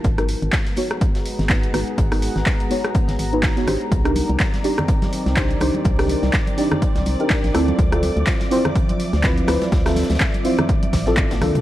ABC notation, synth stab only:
X:1
M:4/4
L:1/16
Q:"Swing 16ths" 1/4=124
K:Dphr
V:1 name="Synth stab"
[=B,E^F_B] [_CE_GB]4- [CEGB] [CEG^c] z4 z [_CEG_c] z [CEGc]2- | [_CE_G_c] [CEGB]2 z3 [CEG^c] z4 [_CEG_c]2 [CEG^c] [DE=G=c]2- | [DEGc] [DEGB]4- [DEGB] [DEGd] z4 z [DEGc] z [DEGc]2- | [DEGc] [DEGB]2 z3 [DEGd] z4 [DEGB]3 [C=EFA]2- |
[C=EFA] [CEFA]4- [CEFA] [CEFc] z4 z [CEF=B] z [CEFB]2- | [C=EF=B] [CEFA]2 z3 [CEFc] z4 [CEFA]3 [_B,DFA]2 |]